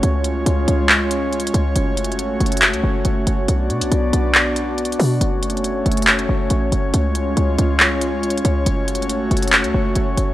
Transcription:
Already playing: C#4 C#5
0.03 C#2 G#3 F4, closed hi-hat
0.24 closed hi-hat
0.46 C#2, closed hi-hat
0.68 C#2, closed hi-hat
0.89 clap
1.11 closed hi-hat
1.33 closed hi-hat
1.40 closed hi-hat
1.47 closed hi-hat
1.54 C#2, closed hi-hat
1.76 F#1 A3 F#4, closed hi-hat
1.97 closed hi-hat
2.04 closed hi-hat
2.12 closed hi-hat
2.19 G#1, closed hi-hat
2.40 F#1, closed hi-hat
2.46 closed hi-hat
2.52 closed hi-hat
2.57 closed hi-hat
2.62 clap, closed hi-hat
2.73 C#2, closed hi-hat
2.84 F#1
3.05 F#1, closed hi-hat
3.27 F#1, closed hi-hat
3.48 B1 B3 D4 D5, closed hi-hat
3.70 B2, closed hi-hat
3.81 B1, closed hi-hat
3.92 B1, closed hi-hat
4.13 B1, closed hi-hat
4.35 clap
4.56 closed hi-hat
4.78 closed hi-hat
4.85 closed hi-hat
4.92 closed hi-hat
4.99 B2, open hi-hat
5.21 F#1 A3 C#4 C#5, closed hi-hat
5.43 closed hi-hat
5.50 closed hi-hat
5.57 closed hi-hat
5.64 closed hi-hat
5.86 F#1, closed hi-hat
5.92 closed hi-hat
5.97 closed hi-hat
6.02 closed hi-hat
6.07 clap, closed hi-hat
6.19 closed hi-hat
6.29 F#1
6.50 A1, closed hi-hat
6.72 F#1, closed hi-hat
6.94 C#2 G#3 F4, closed hi-hat
7.15 closed hi-hat
7.37 C#2, closed hi-hat
7.58 C#2, closed hi-hat
7.80 clap
8.01 closed hi-hat
8.23 closed hi-hat
8.30 closed hi-hat
8.38 closed hi-hat
8.45 C#2, closed hi-hat
8.66 F#1 A3 F#4, closed hi-hat
8.88 closed hi-hat
8.95 closed hi-hat
9.02 closed hi-hat
9.10 G#1, closed hi-hat
9.31 F#1, closed hi-hat
9.37 closed hi-hat
9.43 closed hi-hat
9.48 closed hi-hat
9.53 clap, closed hi-hat
9.64 C#2, closed hi-hat
9.74 F#1
9.95 F#1, closed hi-hat
10.17 F#1, closed hi-hat

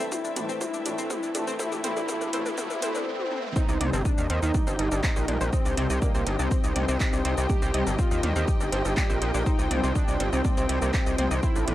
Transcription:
Already playing: A3 C4 E4 A4 B4 C5 E5 G5, riser
0.12 C4 E4, kick, mid tom, shaker
0.25 D4, shaker
0.36 A2 E3 A3 D4, closed hi-hat, mid tom, shaker
0.49 C4, shaker
0.61 C4 E4, kick, mid tom, shaker
0.74 D4, shaker
0.86 A2 E3 A3 D4, closed hi-hat, mid tom, shaker
0.98 C4, shaker
1.10 C4 E4, kick, mid tom, shaker
1.23 D4, shaker
1.35 A2 E3 A3 D4, closed hi-hat, mid tom, shaker
1.47 C4, shaker
1.59 A2 E3 A3 C4 E4, kick, mid tom, shaker
1.72 D4, mid tom, shaker
1.84 A2 E3 A3 C4 E4, closed hi-hat, mid tom, shaker
1.97 D4, mid tom, shaker
2.09 A2 E3 A3 C4 E4, kick, mid tom, shaker
2.21 D4, mid tom, shaker
2.33 A2 E3 A3 C4 E4, closed hi-hat, mid tom, shaker
2.46 D4, mid tom, shaker
2.58 A2 E3 A3 C4 E4, kick, mid tom, swell, shaker
2.70 D4, mid tom, shaker
2.82 A2 E3 A3 C4 E4, closed hi-hat, mid tom, shaker
2.95 D4, mid tom, shaker
3.20 high tom
3.31 mid tom
3.44 mid tom
3.56 C4 D#4 G4 C5, kick, shaker
3.66 C2 D#4 G4 D#5, shaker
3.81 C2 C3 G3 C4 D4 D5 D#5, closed hi-hat, mid tom
3.93 G1 C4 C5, shaker
4.05 D4 D#4 D#5, kick, shaker
4.18 D#2 D4 D5, shaker
4.29 D#2 C4 C5 G5, closed hi-hat
4.43 D#2 D#4 D#5, shaker
4.54 D4 D5, kick, mid tom, shaker
4.67 G1 C4 C5, shaker
4.79 G1 D#4 D#5, closed hi-hat
4.92 G1 D4 D5, shaker
5.04 C4 C5, kick, clap, shaker
5.16 A#1 D#4 D#5, shaker
5.28 A#1 D4 D5, closed hi-hat, mid tom
5.41 A#1 C4 C5, shaker
5.53 C4 D#4 D#5, kick, shaker
5.65 C2 D4 D5, shaker
5.77 C2 C3 G3 C4 C5, closed hi-hat
5.90 C2 D#4 D#5, shaker
6.02 A#3 D4 D5, kick, mid tom, shaker
6.15 C2 C4 C5, shaker
6.27 G1 D#4 D#5, closed hi-hat
6.39 C2 C4 D4 D5, shaker
6.51 C4 C5, kick, shaker
6.64 C2 D#4 D#5, shaker
6.76 C2 D4 D5, closed hi-hat, mid tom
6.88 C2 C4 C5, shaker
7.00 D#4 D#5, kick, clap, shaker
7.13 C2 D4 D5, shaker
7.25 C2 C4 C5, closed hi-hat
7.38 C2 D#4 D#5, shaker
7.50 D4 F4 G4 D5, kick, mid tom, shaker
7.62 C2 C4 C5, shaker
7.74 C2 C3 G3 C4 D#4 D#5, closed hi-hat
7.87 G1 D4 D5, shaker
7.99 C4 F4 C5, kick, shaker
8.11 D#2 D#4 D#5, shaker
8.23 D#2 D4 D5, closed hi-hat, mid tom
8.36 D#2 C4 G4 C5, shaker
8.48 D#4 D#5, kick, shaker
8.61 G1 D4 D5, shaker
8.72 G1 C4 C5, closed hi-hat
8.85 G1 D#4 D#5, shaker
8.97 D4 D5, kick, clap, mid tom, shaker
9.10 A#1 C4 C5, shaker
9.22 A#1 D#4 D#5, closed hi-hat
9.34 A#1 D4 D5, shaker
9.46 C4 D#4 C5, kick, shaker
9.59 C2 D#4 D#5, shaker
9.71 C2 C3 G3 C4 D4 D5, closed hi-hat, mid tom
9.83 C2 C4 C5, shaker
9.95 D4 D#4 D#5, kick, shaker
10.08 C2 D4 D5, shaker
10.20 G1 C4 C5, closed hi-hat
10.33 C2 C4 D#4 D#5, shaker
10.45 D4 D5, kick, mid tom, shaker
10.57 C2 C4 C5, shaker
10.69 C2 G3 G4, closed hi-hat
10.82 C2 A#3 A#4, shaker
10.94 G4 G5, kick, clap, shaker
11.06 C2 D#5 D#6, shaker
11.18 C2 C4 C5, closed hi-hat, mid tom
11.31 C2 D#4 D#5, shaker
11.43 C4 E4 C5, kick, shaker
11.54 A1 D4 A4 D5, shaker
11.68 A1 A2 E3 A3 D4 D5, closed hi-hat, mid tom

